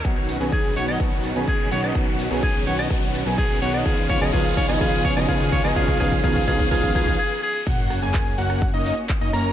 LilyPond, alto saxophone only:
\new Staff \with { instrumentName = "Alto saxophone" } { \time 4/4 \key fis \major \tempo 4 = 126 r4 gis'8 cis''16 dis''16 r4 gis'8 cis''16 dis''16 | r4 gis'8 cis''16 dis''16 r4 gis'8 cis''16 dis''16 | gis'8 cis''16 dis''16 gis'8 cis''16 dis''16 gis'8 cis''16 dis''16 gis'8 cis''16 dis''16 | gis'8 gis'8 gis'8 gis'8 gis'8 gis'8 gis'8 gis'8 |
r1 | }